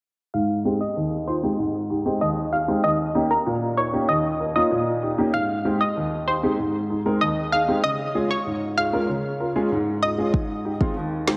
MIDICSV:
0, 0, Header, 1, 4, 480
1, 0, Start_track
1, 0, Key_signature, -4, "major"
1, 0, Tempo, 625000
1, 259, Time_signature, 4, 2, 24, 8
1, 8731, End_track
2, 0, Start_track
2, 0, Title_t, "Synth pluck"
2, 0, Program_c, 0, 84
2, 260, Note_on_c, 0, 77, 103
2, 459, Note_off_c, 0, 77, 0
2, 619, Note_on_c, 0, 75, 83
2, 819, Note_off_c, 0, 75, 0
2, 979, Note_on_c, 0, 72, 73
2, 1179, Note_off_c, 0, 72, 0
2, 1699, Note_on_c, 0, 75, 79
2, 1799, Note_off_c, 0, 75, 0
2, 1940, Note_on_c, 0, 77, 81
2, 2039, Note_off_c, 0, 77, 0
2, 2179, Note_on_c, 0, 75, 109
2, 2379, Note_off_c, 0, 75, 0
2, 2539, Note_on_c, 0, 70, 77
2, 2739, Note_off_c, 0, 70, 0
2, 2899, Note_on_c, 0, 73, 85
2, 3099, Note_off_c, 0, 73, 0
2, 3139, Note_on_c, 0, 75, 87
2, 3239, Note_off_c, 0, 75, 0
2, 3499, Note_on_c, 0, 75, 82
2, 3599, Note_off_c, 0, 75, 0
2, 4099, Note_on_c, 0, 77, 100
2, 4299, Note_off_c, 0, 77, 0
2, 4459, Note_on_c, 0, 75, 78
2, 4659, Note_off_c, 0, 75, 0
2, 4820, Note_on_c, 0, 72, 76
2, 5019, Note_off_c, 0, 72, 0
2, 5539, Note_on_c, 0, 75, 76
2, 5639, Note_off_c, 0, 75, 0
2, 5779, Note_on_c, 0, 77, 85
2, 5879, Note_off_c, 0, 77, 0
2, 6018, Note_on_c, 0, 75, 107
2, 6218, Note_off_c, 0, 75, 0
2, 6379, Note_on_c, 0, 73, 80
2, 6579, Note_off_c, 0, 73, 0
2, 6740, Note_on_c, 0, 77, 83
2, 6939, Note_off_c, 0, 77, 0
2, 7700, Note_on_c, 0, 75, 78
2, 7799, Note_off_c, 0, 75, 0
2, 8731, End_track
3, 0, Start_track
3, 0, Title_t, "Grand piano"
3, 0, Program_c, 1, 0
3, 259, Note_on_c, 1, 44, 73
3, 498, Note_on_c, 1, 56, 71
3, 499, Note_on_c, 1, 60, 64
3, 500, Note_on_c, 1, 63, 66
3, 500, Note_on_c, 1, 67, 80
3, 595, Note_off_c, 1, 56, 0
3, 595, Note_off_c, 1, 60, 0
3, 595, Note_off_c, 1, 63, 0
3, 596, Note_off_c, 1, 67, 0
3, 616, Note_off_c, 1, 44, 0
3, 739, Note_on_c, 1, 39, 67
3, 978, Note_on_c, 1, 63, 41
3, 980, Note_on_c, 1, 65, 46
3, 1027, Note_off_c, 1, 63, 0
3, 1028, Note_off_c, 1, 65, 0
3, 1096, Note_off_c, 1, 39, 0
3, 1098, Note_on_c, 1, 56, 65
3, 1099, Note_on_c, 1, 60, 61
3, 1100, Note_on_c, 1, 63, 60
3, 1100, Note_on_c, 1, 67, 73
3, 1195, Note_off_c, 1, 56, 0
3, 1195, Note_off_c, 1, 60, 0
3, 1195, Note_off_c, 1, 63, 0
3, 1196, Note_off_c, 1, 67, 0
3, 1219, Note_on_c, 1, 44, 70
3, 1458, Note_on_c, 1, 63, 50
3, 1460, Note_on_c, 1, 67, 53
3, 1507, Note_off_c, 1, 63, 0
3, 1508, Note_off_c, 1, 67, 0
3, 1576, Note_off_c, 1, 44, 0
3, 1578, Note_on_c, 1, 56, 63
3, 1579, Note_on_c, 1, 60, 63
3, 1580, Note_on_c, 1, 63, 59
3, 1580, Note_on_c, 1, 67, 69
3, 1674, Note_off_c, 1, 56, 0
3, 1675, Note_off_c, 1, 60, 0
3, 1675, Note_off_c, 1, 63, 0
3, 1676, Note_off_c, 1, 67, 0
3, 1699, Note_on_c, 1, 39, 73
3, 1939, Note_on_c, 1, 63, 42
3, 1941, Note_on_c, 1, 67, 47
3, 1987, Note_off_c, 1, 63, 0
3, 1988, Note_off_c, 1, 67, 0
3, 2056, Note_off_c, 1, 39, 0
3, 2058, Note_on_c, 1, 56, 65
3, 2059, Note_on_c, 1, 60, 62
3, 2060, Note_on_c, 1, 63, 61
3, 2061, Note_on_c, 1, 67, 74
3, 2155, Note_off_c, 1, 56, 0
3, 2155, Note_off_c, 1, 60, 0
3, 2155, Note_off_c, 1, 63, 0
3, 2156, Note_off_c, 1, 67, 0
3, 2180, Note_on_c, 1, 39, 73
3, 2418, Note_on_c, 1, 58, 74
3, 2419, Note_on_c, 1, 61, 69
3, 2420, Note_on_c, 1, 63, 69
3, 2420, Note_on_c, 1, 67, 83
3, 2515, Note_off_c, 1, 58, 0
3, 2515, Note_off_c, 1, 61, 0
3, 2515, Note_off_c, 1, 63, 0
3, 2516, Note_off_c, 1, 67, 0
3, 2536, Note_off_c, 1, 39, 0
3, 2659, Note_on_c, 1, 46, 72
3, 2898, Note_on_c, 1, 63, 39
3, 2900, Note_on_c, 1, 70, 48
3, 2947, Note_off_c, 1, 63, 0
3, 2948, Note_off_c, 1, 70, 0
3, 3016, Note_off_c, 1, 46, 0
3, 3018, Note_on_c, 1, 58, 67
3, 3019, Note_on_c, 1, 61, 63
3, 3019, Note_on_c, 1, 63, 60
3, 3020, Note_on_c, 1, 67, 75
3, 3114, Note_off_c, 1, 58, 0
3, 3115, Note_off_c, 1, 61, 0
3, 3115, Note_off_c, 1, 63, 0
3, 3115, Note_off_c, 1, 67, 0
3, 3140, Note_on_c, 1, 39, 69
3, 3378, Note_on_c, 1, 63, 40
3, 3380, Note_on_c, 1, 70, 46
3, 3427, Note_off_c, 1, 63, 0
3, 3428, Note_off_c, 1, 70, 0
3, 3496, Note_off_c, 1, 39, 0
3, 3499, Note_on_c, 1, 58, 66
3, 3499, Note_on_c, 1, 61, 61
3, 3500, Note_on_c, 1, 63, 59
3, 3501, Note_on_c, 1, 65, 74
3, 3595, Note_off_c, 1, 58, 0
3, 3595, Note_off_c, 1, 61, 0
3, 3595, Note_off_c, 1, 63, 0
3, 3596, Note_off_c, 1, 65, 0
3, 3619, Note_on_c, 1, 46, 74
3, 3858, Note_on_c, 1, 63, 53
3, 3860, Note_on_c, 1, 67, 53
3, 3907, Note_off_c, 1, 63, 0
3, 3908, Note_off_c, 1, 67, 0
3, 3976, Note_off_c, 1, 46, 0
3, 3979, Note_on_c, 1, 58, 68
3, 3980, Note_on_c, 1, 61, 60
3, 3980, Note_on_c, 1, 63, 61
3, 3981, Note_on_c, 1, 67, 76
3, 4075, Note_off_c, 1, 58, 0
3, 4075, Note_off_c, 1, 61, 0
3, 4076, Note_off_c, 1, 63, 0
3, 4076, Note_off_c, 1, 67, 0
3, 4100, Note_on_c, 1, 44, 73
3, 4338, Note_on_c, 1, 56, 72
3, 4338, Note_on_c, 1, 60, 68
3, 4339, Note_on_c, 1, 63, 66
3, 4340, Note_on_c, 1, 67, 80
3, 4435, Note_off_c, 1, 56, 0
3, 4435, Note_off_c, 1, 60, 0
3, 4435, Note_off_c, 1, 63, 0
3, 4436, Note_off_c, 1, 67, 0
3, 4456, Note_off_c, 1, 44, 0
3, 4579, Note_on_c, 1, 39, 69
3, 4818, Note_on_c, 1, 63, 41
3, 4820, Note_on_c, 1, 67, 46
3, 4866, Note_off_c, 1, 63, 0
3, 4868, Note_off_c, 1, 67, 0
3, 4936, Note_off_c, 1, 39, 0
3, 4938, Note_on_c, 1, 56, 67
3, 4939, Note_on_c, 1, 60, 62
3, 4940, Note_on_c, 1, 63, 62
3, 4941, Note_on_c, 1, 67, 76
3, 5035, Note_off_c, 1, 56, 0
3, 5035, Note_off_c, 1, 60, 0
3, 5035, Note_off_c, 1, 63, 0
3, 5036, Note_off_c, 1, 67, 0
3, 5059, Note_on_c, 1, 44, 68
3, 5298, Note_on_c, 1, 63, 50
3, 5300, Note_on_c, 1, 68, 53
3, 5347, Note_off_c, 1, 63, 0
3, 5348, Note_off_c, 1, 68, 0
3, 5416, Note_off_c, 1, 44, 0
3, 5419, Note_on_c, 1, 56, 66
3, 5419, Note_on_c, 1, 60, 59
3, 5420, Note_on_c, 1, 63, 61
3, 5421, Note_on_c, 1, 70, 69
3, 5515, Note_off_c, 1, 56, 0
3, 5515, Note_off_c, 1, 60, 0
3, 5516, Note_off_c, 1, 63, 0
3, 5516, Note_off_c, 1, 70, 0
3, 5539, Note_on_c, 1, 39, 71
3, 5778, Note_on_c, 1, 63, 44
3, 5780, Note_on_c, 1, 68, 47
3, 5826, Note_off_c, 1, 63, 0
3, 5828, Note_off_c, 1, 68, 0
3, 5896, Note_off_c, 1, 39, 0
3, 5898, Note_on_c, 1, 56, 70
3, 5899, Note_on_c, 1, 60, 63
3, 5899, Note_on_c, 1, 63, 61
3, 5900, Note_on_c, 1, 67, 76
3, 5994, Note_off_c, 1, 56, 0
3, 5995, Note_off_c, 1, 60, 0
3, 5995, Note_off_c, 1, 63, 0
3, 5996, Note_off_c, 1, 67, 0
3, 6019, Note_on_c, 1, 49, 70
3, 6258, Note_on_c, 1, 56, 70
3, 6259, Note_on_c, 1, 61, 69
3, 6259, Note_on_c, 1, 65, 71
3, 6260, Note_on_c, 1, 68, 82
3, 6355, Note_off_c, 1, 56, 0
3, 6355, Note_off_c, 1, 61, 0
3, 6355, Note_off_c, 1, 65, 0
3, 6356, Note_off_c, 1, 68, 0
3, 6376, Note_off_c, 1, 49, 0
3, 6499, Note_on_c, 1, 44, 68
3, 6738, Note_on_c, 1, 65, 41
3, 6740, Note_on_c, 1, 68, 48
3, 6787, Note_off_c, 1, 65, 0
3, 6788, Note_off_c, 1, 68, 0
3, 6856, Note_off_c, 1, 44, 0
3, 6858, Note_on_c, 1, 56, 70
3, 6859, Note_on_c, 1, 61, 63
3, 6859, Note_on_c, 1, 65, 66
3, 6860, Note_on_c, 1, 70, 76
3, 6954, Note_off_c, 1, 56, 0
3, 6955, Note_off_c, 1, 61, 0
3, 6955, Note_off_c, 1, 65, 0
3, 6955, Note_off_c, 1, 70, 0
3, 6979, Note_on_c, 1, 49, 71
3, 7219, Note_on_c, 1, 65, 50
3, 7221, Note_on_c, 1, 70, 54
3, 7267, Note_off_c, 1, 65, 0
3, 7268, Note_off_c, 1, 70, 0
3, 7336, Note_off_c, 1, 49, 0
3, 7339, Note_on_c, 1, 56, 80
3, 7340, Note_on_c, 1, 61, 73
3, 7340, Note_on_c, 1, 65, 70
3, 7341, Note_on_c, 1, 68, 86
3, 7435, Note_off_c, 1, 56, 0
3, 7435, Note_off_c, 1, 61, 0
3, 7436, Note_off_c, 1, 65, 0
3, 7436, Note_off_c, 1, 68, 0
3, 7460, Note_on_c, 1, 44, 87
3, 7699, Note_on_c, 1, 65, 44
3, 7701, Note_on_c, 1, 68, 47
3, 7747, Note_off_c, 1, 65, 0
3, 7748, Note_off_c, 1, 68, 0
3, 7816, Note_off_c, 1, 44, 0
3, 7819, Note_on_c, 1, 56, 69
3, 7819, Note_on_c, 1, 61, 62
3, 7820, Note_on_c, 1, 65, 64
3, 7821, Note_on_c, 1, 68, 73
3, 7915, Note_off_c, 1, 56, 0
3, 7915, Note_off_c, 1, 61, 0
3, 7916, Note_off_c, 1, 65, 0
3, 7916, Note_off_c, 1, 68, 0
3, 7940, Note_on_c, 1, 44, 83
3, 8179, Note_on_c, 1, 63, 52
3, 8181, Note_on_c, 1, 67, 60
3, 8227, Note_off_c, 1, 63, 0
3, 8228, Note_off_c, 1, 67, 0
3, 8297, Note_off_c, 1, 44, 0
3, 8298, Note_on_c, 1, 56, 82
3, 8299, Note_on_c, 1, 60, 72
3, 8300, Note_on_c, 1, 63, 74
3, 8300, Note_on_c, 1, 65, 86
3, 8395, Note_off_c, 1, 56, 0
3, 8395, Note_off_c, 1, 60, 0
3, 8395, Note_off_c, 1, 63, 0
3, 8396, Note_off_c, 1, 65, 0
3, 8419, Note_on_c, 1, 39, 82
3, 8658, Note_on_c, 1, 56, 86
3, 8659, Note_on_c, 1, 60, 76
3, 8660, Note_on_c, 1, 63, 74
3, 8660, Note_on_c, 1, 67, 94
3, 8731, Note_off_c, 1, 39, 0
3, 8731, Note_off_c, 1, 56, 0
3, 8731, Note_off_c, 1, 60, 0
3, 8731, Note_off_c, 1, 63, 0
3, 8731, Note_off_c, 1, 67, 0
3, 8731, End_track
4, 0, Start_track
4, 0, Title_t, "Drums"
4, 7939, Note_on_c, 9, 36, 114
4, 8016, Note_off_c, 9, 36, 0
4, 8299, Note_on_c, 9, 36, 93
4, 8376, Note_off_c, 9, 36, 0
4, 8659, Note_on_c, 9, 38, 108
4, 8731, Note_off_c, 9, 38, 0
4, 8731, End_track
0, 0, End_of_file